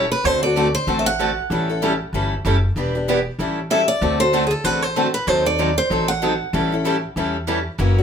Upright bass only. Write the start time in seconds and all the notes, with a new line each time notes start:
Already playing: E1
0.24 D2
0.87 A1
1.50 A1
2.13 G1
2.45 F#1
2.76 E1
3.39 A1
4.01 D2
4.64 A1
5.27 D#2
5.90 A1
6.53 A1
7.16 E2
7.79 F#1